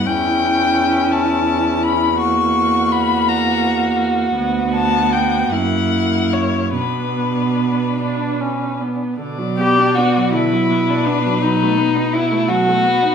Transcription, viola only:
0, 0, Header, 1, 2, 480
1, 0, Start_track
1, 0, Key_signature, 2, "minor"
1, 0, Tempo, 719424
1, 36, Time_signature, 6, 3, 24, 8
1, 2918, Tempo, 779221
1, 3878, Tempo, 819672
1, 5798, Tempo, 742574
1, 7238, Tempo, 703400
1, 8405, End_track
2, 0, Start_track
2, 0, Title_t, "Viola"
2, 0, Program_c, 0, 41
2, 38, Note_on_c, 0, 61, 46
2, 1470, Note_off_c, 0, 61, 0
2, 1474, Note_on_c, 0, 58, 46
2, 2891, Note_off_c, 0, 58, 0
2, 2923, Note_on_c, 0, 59, 42
2, 3628, Note_on_c, 0, 58, 41
2, 3637, Note_off_c, 0, 59, 0
2, 4348, Note_off_c, 0, 58, 0
2, 4352, Note_on_c, 0, 59, 34
2, 5022, Note_off_c, 0, 59, 0
2, 5085, Note_on_c, 0, 62, 45
2, 5328, Note_on_c, 0, 61, 38
2, 5337, Note_off_c, 0, 62, 0
2, 5566, Note_on_c, 0, 59, 35
2, 5575, Note_off_c, 0, 61, 0
2, 5792, Note_off_c, 0, 59, 0
2, 5796, Note_on_c, 0, 50, 41
2, 5912, Note_on_c, 0, 54, 44
2, 5922, Note_off_c, 0, 50, 0
2, 6042, Note_on_c, 0, 59, 39
2, 6052, Note_off_c, 0, 54, 0
2, 6167, Note_on_c, 0, 62, 43
2, 6177, Note_off_c, 0, 59, 0
2, 6296, Note_on_c, 0, 59, 41
2, 6306, Note_off_c, 0, 62, 0
2, 6419, Note_on_c, 0, 54, 41
2, 6429, Note_off_c, 0, 59, 0
2, 6526, Note_on_c, 0, 50, 43
2, 6535, Note_off_c, 0, 54, 0
2, 6649, Note_on_c, 0, 54, 38
2, 6659, Note_off_c, 0, 50, 0
2, 6768, Note_on_c, 0, 59, 39
2, 6778, Note_off_c, 0, 54, 0
2, 6887, Note_on_c, 0, 62, 41
2, 6897, Note_off_c, 0, 59, 0
2, 6999, Note_on_c, 0, 59, 39
2, 7008, Note_off_c, 0, 62, 0
2, 7121, Note_on_c, 0, 54, 41
2, 7131, Note_off_c, 0, 59, 0
2, 7233, Note_off_c, 0, 54, 0
2, 7237, Note_on_c, 0, 54, 41
2, 7364, Note_on_c, 0, 57, 45
2, 7374, Note_off_c, 0, 54, 0
2, 7476, Note_on_c, 0, 59, 41
2, 7486, Note_off_c, 0, 57, 0
2, 7597, Note_on_c, 0, 63, 42
2, 7608, Note_off_c, 0, 59, 0
2, 7727, Note_on_c, 0, 59, 43
2, 7737, Note_off_c, 0, 63, 0
2, 7840, Note_on_c, 0, 57, 39
2, 7850, Note_off_c, 0, 59, 0
2, 7958, Note_on_c, 0, 54, 43
2, 7968, Note_off_c, 0, 57, 0
2, 8091, Note_on_c, 0, 57, 40
2, 8102, Note_off_c, 0, 54, 0
2, 8203, Note_on_c, 0, 59, 44
2, 8214, Note_off_c, 0, 57, 0
2, 8324, Note_on_c, 0, 63, 44
2, 8335, Note_off_c, 0, 59, 0
2, 8405, Note_off_c, 0, 63, 0
2, 8405, End_track
0, 0, End_of_file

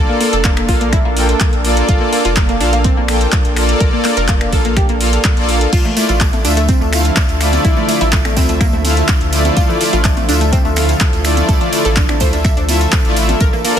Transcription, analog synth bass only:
0, 0, Header, 1, 2, 480
1, 0, Start_track
1, 0, Key_signature, -1, "minor"
1, 0, Tempo, 480000
1, 1887, Time_signature, 4, 2, 24, 8
1, 13794, End_track
2, 0, Start_track
2, 0, Title_t, "Analog synth bass"
2, 0, Program_c, 0, 38
2, 330, Note_on_c, 0, 29, 85
2, 687, Note_on_c, 0, 34, 94
2, 702, Note_off_c, 0, 29, 0
2, 985, Note_off_c, 0, 34, 0
2, 1051, Note_on_c, 0, 34, 99
2, 1345, Note_off_c, 0, 34, 0
2, 1531, Note_on_c, 0, 34, 83
2, 1825, Note_off_c, 0, 34, 0
2, 1888, Note_on_c, 0, 34, 98
2, 1967, Note_off_c, 0, 34, 0
2, 2251, Note_on_c, 0, 29, 87
2, 2608, Note_on_c, 0, 34, 94
2, 2623, Note_off_c, 0, 29, 0
2, 2905, Note_off_c, 0, 34, 0
2, 2972, Note_on_c, 0, 34, 96
2, 3265, Note_off_c, 0, 34, 0
2, 3451, Note_on_c, 0, 34, 85
2, 3745, Note_off_c, 0, 34, 0
2, 3808, Note_on_c, 0, 34, 101
2, 3887, Note_off_c, 0, 34, 0
2, 4171, Note_on_c, 0, 29, 89
2, 4528, Note_on_c, 0, 34, 93
2, 4543, Note_off_c, 0, 29, 0
2, 4825, Note_off_c, 0, 34, 0
2, 4891, Note_on_c, 0, 34, 97
2, 5185, Note_off_c, 0, 34, 0
2, 5372, Note_on_c, 0, 34, 80
2, 5665, Note_off_c, 0, 34, 0
2, 5728, Note_on_c, 0, 38, 97
2, 5807, Note_off_c, 0, 38, 0
2, 6093, Note_on_c, 0, 33, 82
2, 6449, Note_on_c, 0, 38, 94
2, 6464, Note_off_c, 0, 33, 0
2, 6746, Note_off_c, 0, 38, 0
2, 6812, Note_on_c, 0, 38, 98
2, 7106, Note_off_c, 0, 38, 0
2, 7292, Note_on_c, 0, 38, 84
2, 7586, Note_off_c, 0, 38, 0
2, 7648, Note_on_c, 0, 38, 96
2, 7727, Note_off_c, 0, 38, 0
2, 8012, Note_on_c, 0, 33, 84
2, 8368, Note_on_c, 0, 38, 94
2, 8383, Note_off_c, 0, 33, 0
2, 8665, Note_off_c, 0, 38, 0
2, 8732, Note_on_c, 0, 38, 98
2, 9025, Note_off_c, 0, 38, 0
2, 9211, Note_on_c, 0, 38, 87
2, 9505, Note_off_c, 0, 38, 0
2, 9568, Note_on_c, 0, 38, 98
2, 9648, Note_off_c, 0, 38, 0
2, 9931, Note_on_c, 0, 33, 83
2, 10288, Note_on_c, 0, 38, 97
2, 10303, Note_off_c, 0, 33, 0
2, 10585, Note_off_c, 0, 38, 0
2, 10652, Note_on_c, 0, 38, 97
2, 10946, Note_off_c, 0, 38, 0
2, 11132, Note_on_c, 0, 38, 85
2, 11426, Note_off_c, 0, 38, 0
2, 11488, Note_on_c, 0, 38, 99
2, 11567, Note_off_c, 0, 38, 0
2, 11852, Note_on_c, 0, 33, 85
2, 12207, Note_on_c, 0, 38, 93
2, 12222, Note_off_c, 0, 33, 0
2, 12505, Note_off_c, 0, 38, 0
2, 12572, Note_on_c, 0, 38, 94
2, 12865, Note_off_c, 0, 38, 0
2, 13051, Note_on_c, 0, 33, 82
2, 13345, Note_off_c, 0, 33, 0
2, 13407, Note_on_c, 0, 34, 100
2, 13487, Note_off_c, 0, 34, 0
2, 13794, End_track
0, 0, End_of_file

